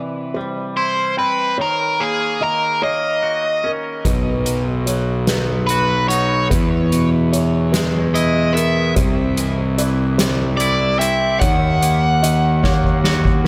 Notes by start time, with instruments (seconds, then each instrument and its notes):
Already playing: clean electric guitar C3 E3, felt piano D5
0.34 clean electric guitar G3, felt piano C5
0.77 clean electric guitar E4, overdriven electric guitar C5
1.17 clean electric guitar C4, overdriven electric guitar B4, felt piano G5
1.58 clean electric guitar D#3, overdriven electric guitar A#4, felt piano C#5
2.00 clean electric guitar A#3, overdriven electric guitar G#4
2.40 clean electric guitar D#3, overdriven electric guitar A#4, felt piano D#5
2.82 clean electric guitar A#3, felt piano C#5, overdriven electric guitar D#5
3.23 clean electric guitar F#4
3.64 clean electric guitar C#4, felt piano A#4
4.05 picked electric bass B1, clean electric guitar B2, felt piano B4, kick, closed hi-hat
4.46 clean electric guitar F#3, closed hi-hat
4.86 clean electric guitar F#3, felt piano C#5, closed hi-hat
5.27 clean electric guitar B3, felt piano B4, snare, closed hi-hat
5.67 clean electric guitar F#4, overdriven electric guitar B4, closed hi-hat
6.08 clean electric guitar D#4, overdriven electric guitar C#5, felt piano F#5, closed hi-hat
6.50 clean electric guitar E2, picked electric bass E2, felt piano B4, kick, closed hi-hat
6.92 clean electric guitar B2, closed hi-hat
7.33 clean electric guitar E3, felt piano C#5, closed hi-hat
7.72 clean electric guitar G#3, felt piano B4, snare, closed hi-hat
8.14 clean electric guitar E4, overdriven electric guitar D#5, closed hi-hat
8.54 clean electric guitar B3, felt piano A#4, overdriven electric guitar E5, closed hi-hat
8.96 picked electric bass C2, clean electric guitar C3, felt piano C5, kick, closed hi-hat
9.37 clean electric guitar E3, closed hi-hat
9.78 clean electric guitar E3, felt piano D5, closed hi-hat
10.18 clean electric guitar G3, felt piano C5, snare, closed hi-hat
10.57 clean electric guitar E4, overdriven electric guitar D5, closed hi-hat
10.99 clean electric guitar C4, overdriven electric guitar E5, felt piano G5, closed hi-hat
11.40 picked electric bass D#2, clean electric guitar D#3, felt piano C#5, overdriven electric guitar F#5, kick, closed hi-hat
11.82 clean electric guitar A#3, closed hi-hat
12.23 clean electric guitar D#3, felt piano D#5, closed hi-hat
12.63 clean electric guitar A#3, felt piano C#5, kick, snare
12.84 kick
13.04 clean electric guitar F#4, snare
13.25 kick
13.44 felt piano A#4